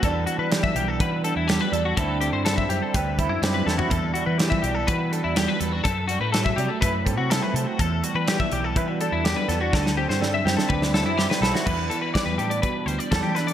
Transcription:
<<
  \new Staff \with { instrumentName = "Clean electric guitar" } { \time 4/4 \key e \minor \tempo 4 = 124 a'8 fis'16 b'16 g'16 e''16 g'16 a'16 b'8 a'16 e'16 g'16 b'16 a'16 fis'16 | a'8 g'16 c''16 a'16 e''16 g'16 a'16 b'8 a'16 e'16 g'16 b'16 a'16 fis'16 | a'8 fis'16 b'16 g'16 e''16 g'16 a'16 b'8 a'16 e'16 g'16 b'16 a'16 fis'16 | a'8 fis'16 b'16 a'16 e''16 g'16 a'16 b'8 a'16 fis'16 a'16 b'16 a'16 fis'16 |
a'8 fis'16 b'16 g'16 e''16 g'16 a'16 b'8 a'16 e'16 g'16 b'16 a'16 fis'16 | a'8 g'16 c''16 a'16 e''16 g'16 a'16 b'8 a'16 e'16 g'16 b'16 a'16 fis'16 | b'8 a'16 b'16 d''16 b'16 g'16 d''16 b'8 c''16 d''16 a'16 g'16 b'16 d''16 | }
  \new Staff \with { instrumentName = "Clean electric guitar" } { \time 4/4 \key e \minor << { <e g d' fis'>8 g4 g8 fis'8 d'8 g8 d'8 | <g c' e'>8 c'4 c'8 g'8 e'8 c'8 e'8~ | e'8 g4 g8 fis'8 d'8 g8 b16 d'16 | r8 g16 a8. g16 a16 e'8 c'8 a8 c'8 |
r8 g4 g8 e'16 fis'16 d'8 g8 b16 d'16 | r8 c'4 c'8 g'8 e'8 c'8 e'8~ | e'4 g8 d'4 g8 a'8 d'8 | } \\ { e,4 e2. | d4 g2. | e,4 e2. | fis,4 fis2. |
e,4 e2. | d4 g2. | e,8 e4. b,2 | } >> }
  \new Staff \with { instrumentName = "Fingered electric bass" } { \clef bass \time 4/4 \key e \minor e,8 r16 e8. b,,8 e8. e,8 r16 e,8 | d,8. g,8. fis,16 r16 d,8. fis,16 fis,8 e,8 | e,8 r16 e8. b,,8 e8. e,8 r16 e,8 | fis,8. a,8. c16 r16 fis,8. c8 r16 c16 r16 |
e,8 r16 e8. b,,8 e8. e,8 r16 e,8 | d,8. g,8. fis,16 r16 d,8. fis,8 r16 b,,16 r16 | e,8 r8. e,16 a,8 r8 d,16 r16 e,16 e8. | }
  \new DrumStaff \with { instrumentName = "Drums" } \drummode { \time 4/4 <hh bd>8 hh8 <hh sn>16 bd16 hh8 <hh bd>8 hh8 <hh sn>8 hh8 | <hh bd>8 hh8 <hh sn>16 bd16 hh8 <hh bd>8 <hh bd>8 <hh sn>8 sn16 tomfh16 | <hh bd>8 hh8 <hh sn>16 bd16 hh8 <hh bd>8 hh8 <hh sn>8 hh8 | <hh bd>8 hh8 <hh sn>16 bd16 hh8 <hh bd>8 <hh bd>8 <hh sn>8 hh8 |
<hh bd>8 hh8 <hh sn>16 bd16 hh8 <hh bd>8 hh8 <hh sn>8 <hh sn>8 | <bd sn>16 sn8 sn16 sn8 sn16 sn16 bd16 sn16 sn8 sn16 sn16 sn16 sn16 | <cymc bd>8 hh8 <hh bd sn>8 hh16 hh16 <hh bd>8 hh16 hh16 <hh bd sn>8 <hh sn>16 hh16 | }
>>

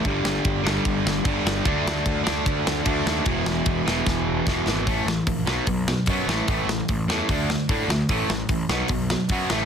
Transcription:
<<
  \new Staff \with { instrumentName = "Overdriven electric guitar" } { \clef bass \time 4/4 \key d \lydian \tempo 4 = 149 <g, d g>4. <g, d g>4. <g, d g>4 | <d a d'>4. <d a d'>4. <d a d'>4 | <e, b, e>4. <e, b, e>4. <e, b, e>4 | <a, e a>8 <a, e>8 <a, e>8 <b, fis b>8 <b, fis>8 <b, fis>8 <b, fis b>8 <a, e a>8 |
<a, e a>8 <a, e>8 <a, e>8 <a, e a>8 <d a d'>8 <d a>8 <d a d'>8 <d a>8 | <a, e a>8 <a, e>8 <a, e>8 <b, fis b>8 <b, fis>8 <b, fis>8 <b, fis b>8 <a, e a>8 | }
  \new Staff \with { instrumentName = "Picked electric bass" } { \clef bass \time 4/4 \key d \lydian g,,8 g,,8 g,,8 g,,8 g,,8 g,,8 g,,8 g,,8 | d,8 d,8 d,8 d,8 d,8 d,8 d,8 dis,8 | e,,8 e,,8 e,,8 e,,8 e,,8 e,,8 e,,8 gis,,8 | a,,8 a,,8 bes,,8 b,,8 b,,4 fis,8 a,,8 |
a,,8 a,,8 a,,8 e,8 d,4 a,8 d,8 | a,,8 a,,8 a,,8 b,,8 b,,4 fis,8 a,,8 | }
  \new DrumStaff \with { instrumentName = "Drums" } \drummode { \time 4/4 <bd cymr>8 sn8 <bd cymr>8 sn8 <bd cymr>8 sn8 <bd cymr>8 sn8 | <bd cymr>8 sn8 <bd cymr>8 sn8 <bd cymr>8 sn8 <bd cymr>8 sn8 | <bd cymr>8 sn8 <bd cymr>8 sn8 <bd sn>4 <bd sn>8 sn8 | <hho bd>8 sn8 <hho bd>8 sn8 <hho bd>8 sn8 <hho bd>8 sn8 |
<hho bd>8 sn8 <hho bd>8 sn8 <hho bd>8 sn8 <hho bd>8 sn8 | <hho bd>8 sn8 <hho bd>8 sn8 <hho bd>8 sn8 <hho bd>8 sn8 | }
>>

